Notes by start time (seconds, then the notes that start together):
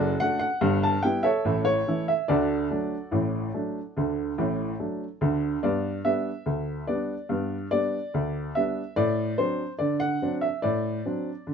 Already playing: F#1 F#2 F#4 A4 D5
0.20 A3 D4 F#4 F#5
0.39 F#5
0.61 G1 G2
0.83 A5
1.03 G3 B3 E4 G5
1.23 A4 C#5 E5
1.45 A1 A2
1.65 C#5
1.87 E3 A3 E4
2.08 E5
2.28 D2 D3 F#4 A4 D5
2.70 F#3 A3 D4
3.11 A1 A2
3.54 F#3 A3 D4
3.97 D2 D3
4.38 A1 A2
4.80 F#3 A3 D4
5.21 D2 D3
5.63 G2 B3 D5
6.05 G3 B3 D4 E5
6.46 D2
6.87 G3 B3 D4 D5
7.29 G2 B3
7.71 G3 B3 D4 D5
8.14 D2
8.55 G3 B3 D4 E5
8.96 A2 D5
9.38 F#3 C4 D4 C5
9.79 D3 D5
10.00 F#5
10.22 F#3 C4 D4
10.41 E5
10.62 A2 D5
11.05 F#3 C4 D4
11.47 D3